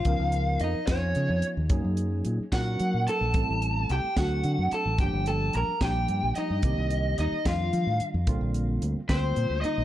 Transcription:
<<
  \new Staff \with { instrumentName = "Lead electric guitar" } { \time 6/8 \key bes \major \tempo 4. = 73 f''4 ees''8 des''4 r8 | r4. ges''4 a''8~ | a''4 g''8 fis''4 a''8 | g''8 a''8 bes''8 g''4 ees''8~ |
ees''4 ees''8 f''4 r8 | r4. c''4 ees''8 | }
  \new Staff \with { instrumentName = "Hollow-body jazz guitar" } { \time 6/8 \key bes \major f'4 ees'8 des'4 r8 | r4. ges'4 a'8~ | a'4 g'8 fis'4 a'8 | g'8 a'8 bes'8 g'4 ees'8~ |
ees'4 ees'8 f'4 r8 | r4. c'4 ees'8 | }
  \new Staff \with { instrumentName = "Tine electric piano" } { \time 6/8 \key bes \major <f ces' des' ees' bes'>4. <f ces' des' ees' f'>4. | <ges bes des' ees' aes'>4. <ges bes des' ees' bes'>4. | <g a c' e' a'>4. <fis a c' d' a'>4. | <f g bes d' g'>4. <f g bes d' g'>4. |
<ees g bes c' g'>4. <ees g a d' f'>4. | <d g bes c' f'>4. <d g bes c' f'>4. | }
  \new Staff \with { instrumentName = "Fingered electric bass" } { \clef bass \time 6/8 \key bes \major des,16 des,8. f,16 r16 f,8 des16 f,16 r16 ees,16 | ges,16 ges,8. bes,16 r16 bes,8 ges16 bes,16 r16 bes,,16 | a,,16 a,,8. c,16 r16 d,8 d16 fis,16 r16 a,,16 | g,,16 g,,8. bes,,16 r16 bes,,8 g,16 bes,,16 r16 g,16 |
c,16 c,8. ees,16 r16 f,8 f16 a,16 r16 f,16 | bes,,16 bes,,8. d,16 r16 d,8 bes,16 d,16 r16 bes,,16 | }
  \new DrumStaff \with { instrumentName = "Drums" } \drummode { \time 6/8 <hh bd>8 hh8 hh8 <hh bd sn>8 hh8 hh8 | <hh bd>8 hh8 hh8 <hh bd sn>8 hh8 hh8 | <hh bd>8 hh8 hh8 <hh bd sn>8 hh8 hh8 | <hh bd>8 hh8 hh8 <hh bd sn>8 hh8 hh8 |
<hh bd>8 hh8 hh8 <hh bd sn>8 hh8 hh8 | <hh bd>8 hh8 hh8 <hh bd sn>8 hh8 hh8 | }
>>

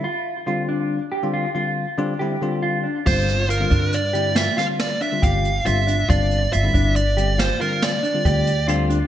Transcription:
<<
  \new Staff \with { instrumentName = "Lead electric guitar" } { \time 7/4 \key c \mixolydian \tempo 4 = 139 r1. r4 | c''4 bes'4 d''4 e''8 f''8 d''8 e''8 f''4 e''4 | d''4 e''4 d''4 c''8 bes'8 d''2 r4 | }
  \new Staff \with { instrumentName = "Clean electric guitar" } { \time 7/4 \key c \mixolydian f'4 f'8 d'4 g'8 f'8 f'4 d'8 g'4 f'8 d'8 | f'4 f'8 d'4 g'8 f'8 f'4 d'8 g'4 f'8 d'8 | f'4 f'8 d'4 g'8 f'8 f'4 d'8 g'4 f'8 d'8 | }
  \new Staff \with { instrumentName = "Tine electric piano" } { \time 7/4 \key c \mixolydian r4 <d g c' f'>4~ <d g c' f'>16 r8 <d g c' f'>8 r16 <d g c' f'>8. r16 <d g c' f'>16 r16 <d g c' e'>16 r16 <d g c' f'>4 r8 | <d g c' f'>8. r8 <d g c' f'>8. r8 <d g c' e'>8. r16 <d g c' f'>8. r8 <d g c' f'>8. r8 <d g c' f'>8. r16 | <d g c' d'>8. r8 <d g c' e'>8. r8 <d g c' g'>8. r16 <d g c' f'>8. r8 <d g c' f'>8. r8 <d g c' f'>8. r16 | }
  \new Staff \with { instrumentName = "Upright bass" } { \clef bass \time 7/4 \key c \mixolydian r1. r4 | g,,4. g,2 r4. g,,4 g,,4 | g,,4 g,,8 g,,2 r4. d,2 | }
  \new DrumStaff \with { instrumentName = "Drums" } \drummode { \time 7/4 r4 r4 r4 r4 r4 r4 r4 | <cymc bd>8 <hh sn>8 hh8 <hh bd>8 hh8 hh8 <hh sn>8 <hh sn>8 <hh sn>8 hh8 <hh bd>8 hh8 hh8 hh8 | <hh bd>8 hh8 hh8 <hh bd>8 hh8 hh8 <hh sn>8 hh8 <hh sn>8 hh8 <hh bd>8 hh8 hh8 hh8 | }
>>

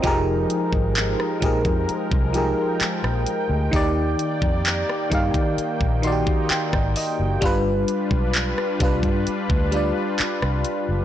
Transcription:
<<
  \new Staff \with { instrumentName = "FM electric piano" } { \time 4/4 \key f \dorian \tempo 4 = 65 << { c''16 r2. r8. | r2 r8 c'''8 g''8 ees''8 | r1 | } \\ { <f ees' g' aes' bes'>4 r8 <f ees' g' aes' bes'>8 r8 <f ees' g' aes' bes'>4 r8 | <ees ees' g' d''>4 r8 <ees ees' g' f''>8 r8 <ees ees' ges' g' d''>4 r8 | <g d' f' b'>4 r8 <g d' f' b'>8 r8 <g d' f' d''>4 r8 | } >> }
  \new Staff \with { instrumentName = "Analog synth pad" } { \time 4/4 \key f \dorian << { <f aes ees' bes'>1 | d''2 ees'2 | <f' b'>1 | } \\ { g''1 | <ees bes>1 | <g d'>1 | } >> }
  \new Staff \with { instrumentName = "Fingered electric bass" } { \clef bass \time 4/4 \key f \dorian f,,8 r16 aes,,8 r16 bes,,16 f,16 r16 c,8 r8 bes,,16 r16 d,16 | ees,8 r16 f,8 r16 g,16 ees16 r16 bes,,8 r8 aes,,16 r16 ges,,16 | g,,8 r16 b,,8 r16 c,16 g,16 r16 d,8 r8 c,16 r16 ges,,16 | }
  \new DrumStaff \with { instrumentName = "Drums" } \drummode { \time 4/4 <hh bd>8 hh16 bd16 <hc hh>16 ss16 <hh bd>16 <hh bd>16 hh16 bd16 hh8 <hc hh>16 ss16 hh8 | <hh bd>8 hh16 bd16 <hc hh>16 ss16 <hh bd>16 <hh bd>16 hh16 bd16 hh16 bd16 <hc hh>16 <bd ss>16 hho8 | <hh bd>8 hh16 bd16 <hc hh>16 ss16 <hh bd>16 <hh bd>16 hh16 bd16 hh8 <hc hh>16 ss16 hh8 | }
>>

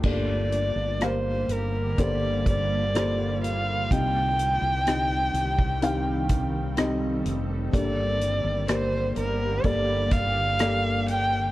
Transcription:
<<
  \new Staff \with { instrumentName = "Violin" } { \time 4/4 \key g \minor \tempo 4 = 63 d''4 c''8 bes'8 d''8 d''4 f''8 | g''2. r4 | d''4 c''8 bes'8 d''8 f''4 g''8 | }
  \new Staff \with { instrumentName = "Felt piano" } { \time 4/4 \key g \minor << { f''16 r2. r8. | r1 | r1 | } \\ { <bes g' a' d''>4 <bes g' bes' f''>4 <bes g' a' c''>4 <bes g' a' c''>4 | <c' ees' g' ees''>4 <c' ees' g' ees''>4 <c' ees' g' f''>4 <c' ees' g' ees''>4 | <bes g' a' d''>4 <bes g' bes' d''>4 <bes g' a' d''>4 <bes g' a' d''>4 | } >> }
  \new Staff \with { instrumentName = "Felt piano" } { \clef bass \time 4/4 \key g \minor g,4. r2 r8 | c4. r2 r8 | g,4. r2 r8 | }
  \new Staff \with { instrumentName = "Ambient pad" } { \time 4/4 \key g \minor << { g'2 f'2 | g'2 a'2 | g'1 | } \\ { <d g bes>1 | <ees g c'>1 | <d g bes>1 | } >> }
  \new Staff \with { instrumentName = "Fingered electric bass" } { \clef bass \time 4/4 \key g \minor g,,8. g,,8. g,,8 g,,2 | c,8. c,8. c,2 f,,8 | g,,8. g,,8. g,,8 g,,2 | }
  \new DrumStaff \with { instrumentName = "Drums" } \drummode { \time 4/4 <cymc bd>8 hh8 <hh ss>8 hh8 <hh bd>8 <hh bd>8 <hh ss>8 hh8 | <hh bd>8 hh8 <hh ss>8 hh16 bd16 hh8 <hh bd>8 <hh ss>8 hh8 | <hh bd>8 hh8 <hh ss>8 hh8 <hh bd>8 <hh bd>8 <hh ss>8 hh8 | }
>>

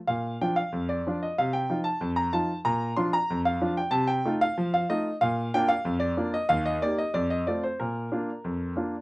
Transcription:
<<
  \new Staff \with { instrumentName = "Grand piano" } { \time 2/4 \key bes \major \tempo 4 = 93 f''8 g''16 f''8 d''8 ees''16 | f''16 g''8 a''8 bes''16 a''8 | bes''8 c'''16 bes''8 f''8 g''16 | a''16 g''8 f''8 f''16 ees''8 |
f''8 g''16 f''8 d''8 ees''16 | f''16 ees''16 d''16 ees''16 d''16 ees''16 d''16 c''16 | bes'2 | }
  \new Staff \with { instrumentName = "Grand piano" } { \time 2/4 \key bes \major bes,8 <f d' f'>8 f,8 <f d' f'>8 | c8 <f ees' f'>8 f,8 <f ees' f'>8 | bes,8 <f d' f'>8 f,8 <f d' f'>8 | c8 <a ees' f'>8 f8 <a ees' f'>8 |
bes,8 <bes d' f'>8 f,8 <bes d' f'>8 | ees,8 <bes ees' g'>8 f,8 <a c' f'>8 | bes,8 <bes d' f'>8 f,8 <bes d' f'>8 | }
>>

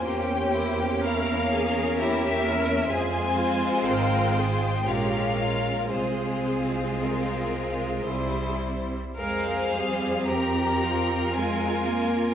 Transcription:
<<
  \new Staff \with { instrumentName = "Violin section" } { \time 3/4 \key f \minor \tempo 4 = 58 g''4 f''4 e''4 | aes''4 g''4 f''4 | c''2~ c''8 r8 | f''4 bes''4 aes''4 | }
  \new Staff \with { instrumentName = "Cello section" } { \time 3/4 \key f \minor g'4 bes'8 aes'8 g'8 bes'8 | aes'8 f'8 bes'8 aes'8 g'8 f'8 | aes'2~ aes'8 r8 | bes'8 aes'8 g'8 f'4. | }
  \new Staff \with { instrumentName = "Violin section" } { \time 3/4 \key f \minor << { c''4 bes'2 | c''2 bes'4 | aes'4 bes'4 c''4 | c''4 bes'2 | } \\ { bes16 cis'16 e'16 g'16 e'16 cis'16 bes16 cis'16 e'16 g'16 e'16 cis'16 | f'2 f'4 | f'2 e'8. r16 | aes'4 g'4 f'4 | } >> }
  \new Staff \with { instrumentName = "Viola section" } { \time 3/4 \key f \minor << { cis'2. | c'2 des'4 | c'2 c'4 | c'2. | } \\ { bes2. | aes2 aes4 | aes2 g4 | aes8 g8 f4 aes8 bes8 | } >> }
  \new Staff \with { instrumentName = "Double bass section" } { \clef bass \time 3/4 \key f \minor e,2. | f,4 aes,,4 bes,,4 | c,2 c,4 | f,2. | }
>>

